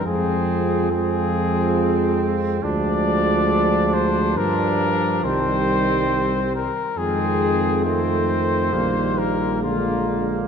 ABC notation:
X:1
M:3/4
L:1/8
Q:1/4=69
K:Fdor
V:1 name="Cornet"
A2 A3 z | d3 c B2 | c3 B A2 | c3 B F z |]
V:2 name="Trumpet"
C2 C4 | D4 D2 | C3 z C2 | C2 B,2 B,2 |]
V:3 name="French horn" clef=bass
A,2 A,4 | A,4 G,2 | G,3 z A,2 | =A,2 G,2 _A,2 |]
V:4 name="Trombone" clef=bass
F,2 F,4 | F,4 F,2 | E,3 z E,2 | E,2 E,2 D,2 |]
V:5 name="Bass trombone" clef=bass
F,,6 | D,,4 G,,2 | C,,3 z F,,2- | F,,2 B,,,4 |]